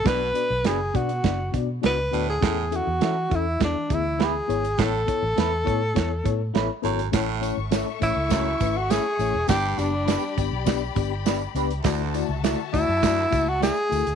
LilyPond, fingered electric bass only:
\new Staff \with { instrumentName = "Fingered electric bass" } { \clef bass \time 4/4 \key a \major \tempo 4 = 102 b,,8 r16 b,,16 fis,,8 b,8 fis,,8 b,8 cis,8 d,8 | e,8. e,16 e8 e,8 e,16 r16 d,4 gis,,8 | a,,8 r16 a,,16 e,8 a,8 e,8 a,8 a,,16 r16 gis,,8 | a,,8. gis,,8 r16 a,,16 cis,8. gis,,8. r16 a,,16 e,,16 |
g,,8 fis,,8. r16 g,,16 b,,8. g,,4 cis,8 | d,8. cis,8 r16 d,16 fis,8. cis,8. r16 d,16 d,16 | }